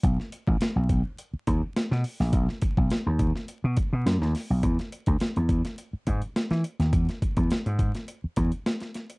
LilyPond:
<<
  \new Staff \with { instrumentName = "Slap bass" } { \clef bass \time 4/4 \key e \lydian \tempo 4 = 104 b,,16 r8 a,,16 r16 b,,8 r8. dis,16 r8 b,16 r16 ais,,16 | b,,16 r8 b,,16 r16 dis,8 r8 b,16 r16 b,16 fis,16 dis,16 r16 b,,16 | e,16 r8 d,16 r16 e,8 r8. gis,16 r8 e16 r16 dis,16 | e,16 r8 e,16 r16 gis,8 r8. e,16 r4 r16 | }
  \new DrumStaff \with { instrumentName = "Drums" } \drummode { \time 4/4 <hh bd>16 sn16 hh16 bd16 <hh sn>8 <hh bd>8 hh8 <hh bd>8 <hh sn>16 sn16 hho16 sn16 | <hh bd>16 sn16 <hh bd>16 bd16 <hh sn>8 <hh bd>16 sn16 hh8 <hh bd>8 <hh sn>16 sn16 <hho sn>8 | <hh bd>16 <hh sn>16 hh16 <hh bd>16 <hh sn>16 hh16 <hh bd>16 <hh sn>16 hh8 <hh bd>16 hh16 <hh sn>16 <hh sn>16 hh16 <hh sn>16 | <hh bd>16 <hh sn>16 <hh bd>16 <hh bd>16 <hh sn>16 hh16 <hh bd>16 <hh sn>16 hh8 <hh bd>16 hh16 <hh sn>16 <hh sn>16 <hh sn>16 hh16 | }
>>